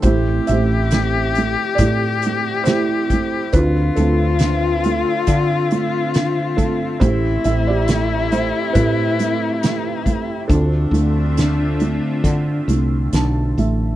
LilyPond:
<<
  \new Staff \with { instrumentName = "Cello" } { \time 4/4 \key a \minor \tempo 4 = 69 g'1 | f'1 | e'1 | d'2.~ d'8 r8 | }
  \new Staff \with { instrumentName = "Analog synth pad" } { \time 4/4 \key a \minor <a c' g'>1 | <d c' f' e''>1 | <a g'>1 | <d a c' f' e''>1 | }
  \new Staff \with { instrumentName = "Felt piano" } { \time 4/4 \key a \minor << { c''8 e''4. d''4 c''4 | b'8 a'2 r4 a'8 | c''8 e''16 d''8. c''8 b'2 | a'2. a''8 e''8 | } \\ { <e' g'>8 <g' c''>4. g'4 <e' g'>4 | f'8 <c' f'>2 r4. | <e' g'>8. g'4~ g'16 <e' g'>2 | <c' f'>2. r4 | } >> }
  \new Staff \with { instrumentName = "Felt piano" } { \time 4/4 \key a \minor a8 a8 a8 a8 a8 a8 a8 a8 | d8 a8 d8 a8 d8 a8 d8 a8 | a8 a8 a8 a8 a8 a8 a8 a8 | d8 a8 d8 a8 d8 a8 d8 a8 | }
  \new Staff \with { instrumentName = "Fretless electric bass" } { \clef bass \time 4/4 \key a \minor a,,8 a,,4. a,2 | d,8 d,4. d2 | a,,8 a,,4. a,2 | d,8 d,4. d8 c,8 b,,8 a,,8 | }
  \new DrumStaff \with { instrumentName = "Drums" } \drummode { \time 4/4 <hh bd>8 hh8 <hh sn>8 hh8 <hh bd>8 hh8 <hh sn>8 <hh bd>8 | <hh bd>8 hh8 <hh sn>8 hh8 <hh bd>8 hh8 <hh sn>8 <hh bd>8 | <hh bd>8 hh8 <hh sn>8 hh8 <hh bd>8 hh8 <hh sn>8 <hh bd>8 | <hh bd>8 hh8 <hh sn>8 hh8 <hh bd>8 hh8 <hh sn>8 hh8 | }
>>